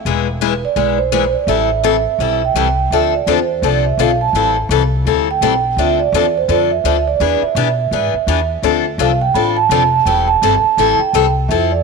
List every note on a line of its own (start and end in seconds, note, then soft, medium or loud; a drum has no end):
0.05 0.62 E1 medium
0.05 0.26 E3 medium
0.05 0.26 G#3 medium
0.05 0.27 B3 medium
0.05 0.27 E4 medium
0.05 0.27 G#4 medium
0.41 0.52 E3 medium
0.41 0.52 G#3 medium
0.41 0.52 B3 medium
0.41 0.53 E4 medium
0.41 0.53 G#4 medium
0.41 0.63 B4 medium
0.65 1.00 D5 medium
0.76 1.33 B1 medium
0.76 0.97 E3 medium
0.76 0.97 G#3 medium
0.76 0.98 B3 medium
0.76 0.98 E4 medium
0.76 0.98 G#4 medium
0.98 1.35 C5 medium
1.12 1.23 E3 medium
1.12 1.23 G#3 medium
1.12 1.24 B3 medium
1.12 1.24 E4 medium
1.12 1.24 G#4 medium
1.33 1.48 D5 medium
1.47 2.05 A1 medium
1.47 1.69 E3 medium
1.47 1.69 G3 medium
1.47 1.69 C4 medium
1.47 1.69 E4 medium
1.47 1.69 A4 medium
1.47 2.51 E5 loud
1.84 1.95 E3 medium
1.84 1.95 G3 medium
1.84 1.95 C4 medium
1.84 1.95 E4 medium
1.84 1.95 A4 medium
2.18 2.49 B1 medium
2.18 2.41 E3 medium
2.18 2.41 G3 medium
2.18 2.41 C4 medium
2.18 2.41 E4 medium
2.18 2.41 A4 medium
2.45 2.89 G5 medium
2.54 2.85 C2 medium
2.54 2.67 E3 medium
2.54 2.67 G3 medium
2.54 2.67 C4 medium
2.54 2.67 E4 medium
2.54 2.67 A4 loud
2.90 3.26 D2 medium
2.90 3.13 D3 medium
2.90 3.13 F3 medium
2.90 3.13 C4 medium
2.90 3.13 D4 medium
2.90 3.13 A4 medium
2.90 3.12 E5 medium
3.15 3.28 D5 medium
3.27 3.61 E2 medium
3.27 3.38 D3 medium
3.27 3.38 F3 medium
3.27 3.38 C4 medium
3.27 3.39 D4 medium
3.27 3.39 A4 medium
3.27 3.61 C5 medium
3.62 3.97 C2 medium
3.62 3.84 D3 medium
3.62 3.84 F3 medium
3.62 3.84 C4 medium
3.62 3.84 D4 medium
3.62 3.84 A4 medium
3.62 3.84 D5 medium
3.86 3.92 E5 medium
3.97 4.32 B1 medium
3.97 4.10 D3 medium
3.97 4.10 F3 medium
3.97 4.10 C4 medium
3.97 4.10 D4 medium
3.97 4.10 A4 medium
3.97 4.20 F5 medium
4.21 4.54 A5 medium
4.33 4.68 A1 medium
4.33 4.55 E3 medium
4.33 4.56 G3 medium
4.33 4.56 C4 medium
4.33 4.56 E4 medium
4.33 4.56 A4 medium
4.69 5.04 C2 medium
4.69 4.81 E3 medium
4.69 4.82 G3 medium
4.69 4.82 C4 medium
4.69 4.82 E4 medium
4.69 4.82 A4 loud
5.05 5.40 D2 medium
5.05 5.27 E3 medium
5.05 5.27 G3 medium
5.05 5.27 C4 medium
5.05 5.27 E4 medium
5.05 5.27 A4 medium
5.31 5.80 G5 loud
5.41 5.76 B1 medium
5.41 5.53 E3 medium
5.41 5.53 G3 medium
5.41 5.53 C4 medium
5.41 5.53 E4 medium
5.41 5.53 A4 loud
5.76 6.12 D2 medium
5.76 5.99 D3 medium
5.76 5.99 F3 medium
5.76 5.99 C4 medium
5.76 5.99 D4 medium
5.76 5.99 A4 medium
5.76 5.99 E5 loud
6.00 6.36 D5 loud
6.12 6.47 E2 medium
6.12 6.25 D3 medium
6.12 6.25 F3 medium
6.12 6.25 C4 medium
6.12 6.25 D4 medium
6.12 6.25 A4 medium
6.38 6.50 C5 medium
6.48 6.83 F2 medium
6.48 6.70 D3 medium
6.48 6.70 F3 medium
6.48 6.70 C4 medium
6.48 6.70 D4 medium
6.48 6.70 A4 medium
6.48 6.60 D5 loud
6.71 7.04 E5 medium
6.84 7.19 D2 medium
6.84 6.96 D3 medium
6.84 6.96 F3 medium
6.84 6.96 C4 medium
6.84 6.96 D4 medium
6.84 6.96 A4 loud
7.08 7.44 D5 medium
7.20 7.41 E2 medium
7.20 7.41 E3 medium
7.20 7.41 B3 medium
7.20 7.42 D4 medium
7.20 7.42 G#4 medium
7.41 8.46 E5 medium
7.41 muted upright bass stroke soft
7.55 7.90 B2 medium
7.55 7.67 E3 medium
7.55 7.67 B3 medium
7.55 7.68 D4 medium
7.55 7.68 G#4 medium
7.91 8.12 G#2 medium
7.91 8.13 E3 medium
7.91 8.13 B3 medium
7.91 8.13 D4 medium
7.91 8.13 G#4 medium
8.14 muted upright bass stroke soft
8.27 8.62 E2 medium
8.27 8.39 E3 medium
8.27 8.39 B3 medium
8.27 8.39 D4 medium
8.27 8.39 G#4 medium
8.62 8.97 D2 medium
8.62 8.84 D3 medium
8.62 8.84 F3 medium
8.62 8.85 C4 medium
8.62 8.85 D4 medium
8.62 8.85 A4 medium
8.98 9.33 C2 medium
8.98 9.10 D3 medium
8.98 9.10 F3 medium
8.98 9.11 C4 medium
8.98 9.11 D4 medium
8.98 9.11 A4 medium
8.98 9.20 F5 medium
9.21 9.36 G5 loud
9.34 9.69 A1 medium
9.34 9.56 D3 medium
9.34 9.56 F3 medium
9.34 9.56 C4 medium
9.34 9.56 D4 medium
9.34 9.56 A4 medium
9.34 9.55 B5 loud
9.57 10.08 A5 medium
9.69 10.05 F1 medium
9.69 9.82 D3 medium
9.69 9.82 F3 medium
9.69 9.82 C4 medium
9.69 9.82 D4 medium
9.69 9.82 A4 medium
10.05 10.41 E1 medium
10.05 10.27 E3 medium
10.05 10.28 G3 medium
10.05 10.28 C4 medium
10.05 10.28 E4 medium
10.05 10.28 A4 medium
10.05 10.26 G5 medium
10.28 10.96 A5 loud
10.42 10.63 G1 medium
10.42 10.54 E3 medium
10.42 10.54 G3 medium
10.42 10.54 C4 medium
10.42 10.54 E4 medium
10.42 10.54 A4 medium
10.64 muted upright bass stroke soft
10.77 10.98 A1 medium
10.77 10.99 E3 medium
10.77 10.99 G3 medium
10.77 10.99 C4 medium
10.77 11.00 E4 medium
10.77 11.00 A4 medium
10.99 11.33 G5 medium
10.99 muted upright bass stroke soft
11.13 11.48 C2 medium
11.13 11.25 E3 medium
11.13 11.25 G3 medium
11.13 11.25 C4 medium
11.13 11.25 E4 medium
11.13 11.26 A4 loud
11.48 11.83 F2 medium
11.48 11.71 F3 medium
11.48 11.71 C4 medium
11.48 11.71 E4 medium
11.48 11.71 A4 medium
11.48 11.70 E5 medium
11.72 11.83 D5 medium